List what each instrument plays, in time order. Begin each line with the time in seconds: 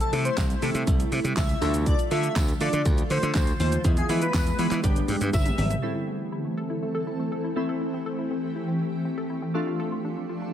Already playing: ambient pad C3 G3 A3 E4
0.00 digital synth lead A4, closed hi-hat, shaker
0.12 slap bass C3, synth keys A3 C4 E4 A4, open hi-hat, shaker
0.25 digital synth lead C5, closed hi-hat, shaker
0.37 slap bass C2, kick, snare, clap, closed hi-hat, tambourine, shaker
0.50 closed hi-hat, shaker
0.62 slap bass C3, synth keys A3 C4 E4 A4, open hi-hat, shaker
0.74 slap bass C3, closed hi-hat, shaker
0.87 slap bass C2, kick, closed hi-hat, shaker
1.00 closed hi-hat, shaker
1.12 slap bass C3, open hi-hat, shaker
1.24 slap bass C3, closed hi-hat, shaker
1.37 slap bass C#2, digital synth lead E5, kick, snare, clap, closed hi-hat, tambourine, shaker
1.49 closed hi-hat, shaker
1.61 slap bass D2, ambient pad D3 F3 F4, synth keys A3 D4 F4 A4, open hi-hat, shaker
1.74 closed hi-hat, shaker
1.86 digital synth lead D5, kick, closed hi-hat, shaker
1.99 closed hi-hat, shaker
2.11 slap bass D3, synth keys A3 D4 F4 A4, digital synth lead E5, open hi-hat, shaker
2.23 closed hi-hat, shaker
2.36 slap bass D2, kick, snare, clap, closed hi-hat, tambourine, shaker
2.48 closed hi-hat, shaker
2.60 slap bass D3, synth keys A3 D4 F4 A4, digital synth lead D5, open hi-hat, shaker
2.73 slap bass D3, closed hi-hat, shaker
2.85 slap bass D2, kick, closed hi-hat, shaker
2.98 closed hi-hat, shaker
3.10 slap bass D3, digital synth lead C5, open hi-hat, shaker
3.23 slap bass D3, closed hi-hat, shaker
3.35 slap bass D2, digital synth lead C5, kick, snare, clap, closed hi-hat, tambourine, shaker
3.47 closed hi-hat, shaker
3.60 slap bass D#2, digital synth lead C5, open hi-hat, shaker
3.72 closed hi-hat, shaker
3.84 slap bass E2, synth keys G#3 B3 E4 G#4, ambient pad B3, kick, closed hi-hat, shaker
3.97 digital synth lead G#4, closed hi-hat, shaker
4.09 slap bass E3, synth keys G#3 B3 E4 B4, open hi-hat, shaker
4.22 digital synth lead B4, closed hi-hat, shaker
4.34 slap bass E2, kick, snare, clap, closed hi-hat, tambourine, shaker
4.47 closed hi-hat, shaker
4.59 slap bass E3, synth keys G#3 B3 E4 B4, open hi-hat, shaker
4.71 slap bass E3, clap, closed hi-hat, shaker
4.83 slap bass G1, synth keys G3 B3 D4 G4, kick, closed hi-hat, shaker
4.96 closed hi-hat, shaker
5.08 slap bass G2, open hi-hat, shaker
5.21 slap bass G2, closed hi-hat, shaker
5.33 slap bass G1, digital synth lead E5, kick, closed hi-hat, high tom, tambourine, shaker
5.46 closed hi-hat, mid tom, shaker
5.58 slap bass G#1, mid tom, open hi-hat, shaker
5.71 closed hi-hat, floor tom, shaker
5.82 ambient pad E3 A3 C4 A4, synth keys A3 C4 E4, synth arpeggio sound A4
5.95 synth arpeggio sound E4
6.08 synth arpeggio sound A3
6.32 synth arpeggio sound E4
6.45 synth arpeggio sound A3
6.57 synth arpeggio sound A4
6.70 synth arpeggio sound E4
6.83 synth arpeggio sound A3
6.95 synth arpeggio sound A4
7.07 synth arpeggio sound E4
7.19 synth arpeggio sound A3
7.32 synth arpeggio sound A4
7.44 synth arpeggio sound E4
7.56 synth keys A3 C4 E4, synth arpeggio sound C4, ambient pad G4
7.69 synth arpeggio sound A4
7.81 synth arpeggio sound E4
7.94 synth arpeggio sound C4
8.06 synth arpeggio sound A4
8.19 synth arpeggio sound E4
8.31 synth arpeggio sound C4
8.56 synth arpeggio sound E4
8.68 synth arpeggio sound C4
9.05 synth arpeggio sound C4
9.18 synth arpeggio sound A4
9.30 synth arpeggio sound E4
9.42 synth arpeggio sound C4
9.54 ambient pad F3 D4 A4, synth keys A3 D4 F4, synth arpeggio sound A4
9.67 synth arpeggio sound F4
9.80 synth arpeggio sound A4
9.92 synth arpeggio sound F4
10.04 synth arpeggio sound D4
10.29 synth arpeggio sound F4
10.42 synth arpeggio sound D4